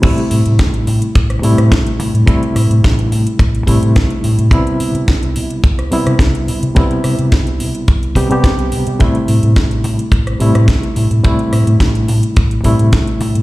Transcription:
<<
  \new Staff \with { instrumentName = "Reed electric piano" } { \clef bass \time 4/4 \key a \minor \tempo 4 = 107 <c g a e'>2~ <c g a e'>8 <c g a e'>4. | <c g a e'>2~ <c g a e'>8 <c g a e'>4. | <c g b e'>2~ <c g b e'>8 <c g b e'>4. | <c g b e'>2~ <c g b e'>8 <c g b g'>16 <c g b g'>4~ <c g b g'>16 |
<c g a e'>2~ <c g a e'>8 <c g a e'>4. | <c g a e'>2~ <c g a e'>8 <c g a e'>4. | }
  \new Staff \with { instrumentName = "Fingered electric bass" } { \clef bass \time 4/4 \key a \minor a,,16 r16 a,16 a,16 a,,8 a,16 r16 a,,8 a,16 a,16 a,,8 a,16 a,16 | a,,16 r16 a,16 a,16 a,,8 a,16 r16 a,,8 a,16 a,16 a,,8 a,16 a,16 | c,16 r16 c16 c16 c,8 c16 r16 c,8 c16 c16 c,8 c16 c16 | c,16 r16 c16 c16 c,8 c16 r16 c,8 c16 c16 c,8 c16 c16 |
a,,16 r16 a,16 a,16 a,,8 a,16 r16 a,,8 a,16 a,16 a,,8 a,16 a,16 | a,,16 r16 a,16 a,16 a,,8 a,16 r16 a,,8 a,16 a,16 a,,8 a,16 a,16 | }
  \new DrumStaff \with { instrumentName = "Drums" } \drummode { \time 4/4 <cymc hh bd>16 hh16 hho16 hh16 <hh bd sn>16 hh16 hho16 hh16 <hh bd>16 <hh ss>16 hho16 <hh ss>16 <hh bd sn>16 hh16 hho16 hh16 | <hh bd>16 hh16 <hho ss>16 hh16 <hh bd sn>16 hh16 hho16 hh16 <hh bd>16 hh16 <hho bd>16 hh16 <hh bd sn>16 hh16 hho16 hh16 | <hh bd>16 hh16 hho16 hh16 <hh bd sn>16 hh16 hho16 hh16 <hh bd>16 <hh ss>16 hho16 <hh ss>16 <hh bd sn>16 hh16 hho16 hh16 | <hh bd>16 hh16 <hho ss>16 hh16 <hh bd sn>16 hh16 hho16 hh16 <hh bd>16 hh16 <hho bd>16 hh16 <hh bd sn>16 hh16 hho16 hh16 |
<hh bd>16 hh16 hho16 hh16 <hh bd sn>16 hh16 hho16 hh16 <hh bd>16 <hh ss>16 hho16 <hh ss>16 <hh bd sn>16 hh16 hho16 hh16 | <hh bd>16 hh16 <hho ss>16 hh16 <hh bd sn>16 hh16 hho16 hh16 <hh bd>16 hh16 <hho bd>16 hh16 <hh bd sn>16 hh16 hho16 hh16 | }
>>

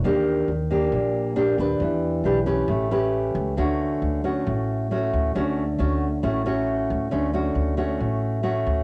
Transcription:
<<
  \new Staff \with { instrumentName = "Nylon-string guitar" } { \time 4/4 \key d \major \tempo 4 = 136 << { <bes d' g'>4 r8 <bes d' g'>4. <bes d' g'>8 <d' g' b'>8~ | <d' g' b'>4 <d' g' b'>8 <cis' g' b'>4 <cis' g' b'>4. | <a cis' fis'>4. <a cis' fis'>4. <a cis' fis'>4 | <a cis' fis'>8 r8 <a cis' fis'>8 r8 <a cis' fis'>8 <a cis' fis'>4. |
<a cis' fis'>8 <a cis' fis'>4 <a cis' fis'>4. <a cis' fis'>4 | } \\ { ees2 bes,2 | e2 a2 | d2 a,2 | d2 a,2 |
d2 a,2 | } >> }
  \new Staff \with { instrumentName = "Upright bass" } { \clef bass \time 4/4 \key d \major ees,4 ees,4 bes,,4. ees,8 | e,4 b,,4 a,,4. cis,8 | d,4 d,4 a,,4. d,8 | d,4 d,4 a,,4. d,8 |
d,4 d,4 a,,4. d,8 | }
>>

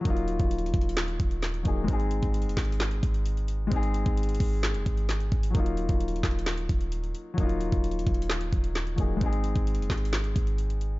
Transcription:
<<
  \new Staff \with { instrumentName = "Grand piano" } { \time 4/4 \key ees \dorian \tempo 4 = 131 <ges bes ees' f'>2.~ <ges bes ees' f'>8 <ges bes ees' aes'>8 | <aes c' ees' aes'>1 | <aes c' ees' aes'>1 | <ges bes ees' f'>1 |
<ges bes ees' f'>2.~ <ges bes ees' f'>8 <ges bes ees' aes'>8 | <aes c' ees' aes'>1 | }
  \new Staff \with { instrumentName = "808-style bass" } { \clef bass \time 4/4 \key ees \dorian ees,,8. ees,,8. ees,,4 ees,,4 ees,,8 | aes,,8. aes,,8 ges,,16 aes,,4 aes,,4. | aes,,8. aes,,8. aes,,8. ges,,16 aes,,4 aes,,8 | ees,,8. ees,,8. ees,,4 ees,,4 r8 |
ees,,8. ees,,8. ees,,4 ees,,4 ees,,8 | aes,,8. aes,,8 ges,,16 aes,,4 aes,,4. | }
  \new DrumStaff \with { instrumentName = "Drums" } \drummode { \time 4/4 <hh bd>16 hh16 hh16 <hh bd>16 \tuplet 3/2 { hh16 hh16 hh16 <hh bd>16 hh16 hh16 } <hc hh sn>16 hh16 <hh bd>16 hh16 <hc hh sn>16 hh16 <hh bd>8 | <hh bd>16 hh16 hh16 <hh bd>16 \tuplet 3/2 { hh16 hh16 hh16 <hc hh bd sn>16 hh16 hh16 } <hc hh sn>16 hh16 <hh bd>16 hh16 hh16 hh16 hh8 | <hh bd>16 hh16 hh16 <hh bd>16 hh32 hh32 hh32 hh32 <hho bd>8 <hc hh sn>16 hh16 <hh bd>16 hh16 <hc hh sn>16 hh16 <hh bd>16 hh16 | <hh bd>16 hh16 hh16 <hh bd>16 \tuplet 3/2 { hh16 hh16 hh16 <hc hh bd sn>16 hh16 hh16 } <hc hh sn>16 hh16 <hh bd>16 hh16 hh16 hh16 hh8 |
<hh bd>16 hh16 hh16 <hh bd>16 \tuplet 3/2 { hh16 hh16 hh16 <hh bd>16 hh16 hh16 } <hc hh sn>16 hh16 <hh bd>16 hh16 <hc hh sn>16 hh16 <hh bd>8 | <hh bd>16 hh16 hh16 <hh bd>16 \tuplet 3/2 { hh16 hh16 hh16 <hc hh bd sn>16 hh16 hh16 } <hc hh sn>16 hh16 <hh bd>16 hh16 hh16 hh16 hh8 | }
>>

